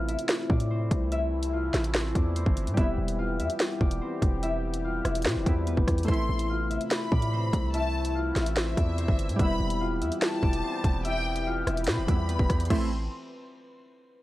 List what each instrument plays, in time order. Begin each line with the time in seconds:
Already playing: 808-style bass A1, analog synth pad C3 E3 A3 E4, synth keys A3 C4 E4, harp B3 D4 F4 B4 D5 F5
0.08 harp E4 E5, closed hi-hat
0.19 closed hi-hat
0.29 snare, closed hi-hat
0.50 808-style bass A2, harp D4 D5, kick
0.60 closed hi-hat
0.70 harp C4 C5
0.91 808-style bass C2, kick, closed hi-hat
1.12 harp E4 E5, closed hi-hat
1.43 closed hi-hat
1.53 harp F4 F5
1.74 808-style bass A1, harp E4 E5, snare, closed hi-hat
1.84 closed hi-hat
1.95 harp C4 C5, snare
2.15 808-style bass E2, harp D4 D5, kick, closed hi-hat
2.36 harp C4 C5, closed hi-hat
2.46 808-style bass G1, kick
2.57 closed hi-hat
2.67 808-style bass A2, closed hi-hat
2.74 808-style bass E1, synth keys G3 B3, analog synth pad G3 B3 G4, harp E5, kick, closed hi-hat
2.78 harp E4, synth keys E4
2.98 808-style bass E1
3.08 closed hi-hat
3.19 harp F4 F5
3.39 808-style bass E2, harp E4 E5, closed hi-hat
3.50 closed hi-hat
3.60 snare, closed hi-hat
3.81 808-style bass E1, harp D4 D5, kick
3.91 closed hi-hat
4.01 harp C4 C5
4.22 808-style bass E1, kick, closed hi-hat
4.43 harp E4 E5, closed hi-hat
4.74 closed hi-hat
4.84 harp F4 F5
5.05 808-style bass E1, harp E4 E5, cross-stick, closed hi-hat
5.15 closed hi-hat
5.22 808-style bass B2, harp C5, snare, closed hi-hat
5.26 harp C4, closed hi-hat
5.36 808-style bass E1
5.45 808-style bass E2, synth keys G3 B3 E4, harp D4 D5, kick, closed hi-hat
5.67 harp B3 B4, closed hi-hat
5.77 808-style bass E1, kick
5.88 808-style bass E2, kick, cross-stick, closed hi-hat
5.98 closed hi-hat
6.03 synth keys A3, closed hi-hat
6.08 808-style bass A1, analog synth pad C3 A3 E4, synth keys C4 E4, harp E4 E5, violin section C6, kick, closed hi-hat
6.14 closed hi-hat
6.29 808-style bass A1
6.39 closed hi-hat
6.50 harp F4 F5
6.70 harp E4 E5, closed hi-hat
6.81 closed hi-hat
6.91 violin section B5, snare, closed hi-hat
7.12 808-style bass A2, harp D4 D5, kick
7.22 closed hi-hat
7.33 harp C4 C5
7.53 808-style bass C2, kick, closed hi-hat
7.74 harp E4 E5, violin section A5, closed hi-hat
8.05 closed hi-hat
8.15 harp F4 F5
8.36 808-style bass A1, harp E4 E5, snare, closed hi-hat
8.46 closed hi-hat
8.57 harp C4 C5, violin section E5, snare
8.77 808-style bass E2, harp D4 D5, kick, closed hi-hat
8.98 harp C4 C5, closed hi-hat
9.08 808-style bass G1, kick
9.19 closed hi-hat
9.29 808-style bass A2, closed hi-hat
9.36 808-style bass E1, analog synth pad E3 G3 B3 G4, synth keys G3 B3, harp E5, violin section B5, kick, closed hi-hat
9.40 harp E4, synth keys E4
9.60 808-style bass E1
9.70 closed hi-hat
9.81 harp F4 F5
10.01 808-style bass E2, harp E4 E5, closed hi-hat
10.12 closed hi-hat
10.22 violin section A5, snare, closed hi-hat
10.43 808-style bass E1, harp D4 D5, kick
10.53 closed hi-hat
10.63 harp C4 C5
10.84 808-style bass E1, kick, closed hi-hat
11.05 harp E4 E5, violin section G5, closed hi-hat
11.36 closed hi-hat
11.47 harp F4 F5
11.67 808-style bass E1, harp E4 E5, cross-stick, closed hi-hat
11.77 closed hi-hat
11.84 808-style bass B2, harp C5, violin section B5, snare, closed hi-hat
11.88 harp C4, closed hi-hat
11.98 808-style bass E1
12.07 808-style bass E2, synth keys G3 B3 E4, harp D4 D5, kick, closed hi-hat
12.29 harp B3 B4, closed hi-hat
12.39 808-style bass E1, kick
12.50 808-style bass E2, kick, cross-stick, closed hi-hat
12.60 closed hi-hat
12.65 closed hi-hat
12.70 808-style bass A1, analog synth pad E3 A3 C4 A4, synth keys A3 C4 E4, harp C4, violin section C6, kick, closed hi-hat, crash
12.75 closed hi-hat